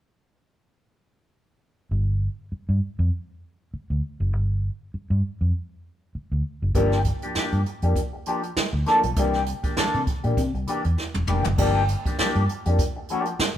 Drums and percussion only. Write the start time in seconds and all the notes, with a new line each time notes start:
6.75 kick, closed hi-hat
6.92 snare
7.04 kick, closed hi-hat
7.22 closed hi-hat
7.35 snare
7.52 closed hi-hat
7.66 closed hi-hat
7.82 closed hi-hat
7.96 kick, closed hi-hat
8.26 closed hi-hat
8.43 closed hi-hat
8.57 snare
8.86 snare, closed hi-hat
9.03 closed hi-hat
9.16 kick, closed hi-hat
9.33 snare, closed hi-hat
9.46 closed hi-hat
9.63 kick, closed hi-hat
9.77 snare
9.94 closed hi-hat
10.07 kick, closed hi-hat
10.23 closed hi-hat
10.37 kick, closed hi-hat
10.55 closed hi-hat
10.67 closed hi-hat
10.84 closed hi-hat
10.98 snare
11.14 high tom
11.27 mid tom
11.44 floor tom
11.58 kick, crash
11.88 closed hi-hat
12.06 kick, closed hi-hat
12.19 snare
12.35 closed hi-hat
12.49 closed hi-hat
12.65 closed hi-hat
12.79 kick, closed hi-hat
13.09 closed hi-hat
13.25 closed hi-hat
13.39 snare